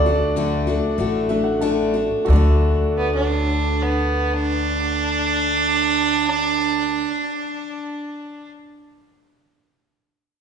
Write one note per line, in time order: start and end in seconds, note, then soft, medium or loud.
0.00 0.78 D2 medium
0.00 2.23 F#4 medium
0.00 2.24 A4 medium
0.00 1.57 D5 medium
0.00 2.25 D5 medium
0.06 0.36 A3 soft
0.06 0.36 D4 medium
0.06 0.36 F#4 medium
0.36 0.67 D3 medium
0.36 0.67 A3 medium
0.36 0.67 D4 medium
0.36 0.66 F#4 medium
0.67 0.97 A3 soft
0.67 0.98 D4 soft
0.67 0.98 F#4 medium
0.98 2.07 A1 medium
0.98 1.30 D3 medium
0.98 1.30 A3 medium
0.98 1.29 D4 medium
0.98 1.28 F#4 medium
1.29 1.61 A3 soft
1.29 1.61 D4 medium
1.29 1.62 F#4 medium
1.29 1.45 E5 medium
1.44 1.60 F#5 medium
1.61 1.95 D3 medium
1.61 1.95 A3 medium
1.61 1.94 D4 loud
1.61 1.93 F#4 medium
1.61 2.24 A5 medium
1.94 2.29 A3 soft
1.94 2.29 D4 soft
1.94 2.28 F#4 medium
2.25 7.03 D2 medium
2.25 7.04 D3 medium
2.25 6.99 F#4 medium
2.25 7.02 A4 medium
2.30 7.09 A3 medium
2.30 7.11 D4 medium
2.30 7.05 D5 medium
2.36 7.14 F#4 medium
2.97 3.13 B3 medium
3.15 3.84 D4 medium
3.82 4.35 B3 medium
4.33 8.50 D4 loud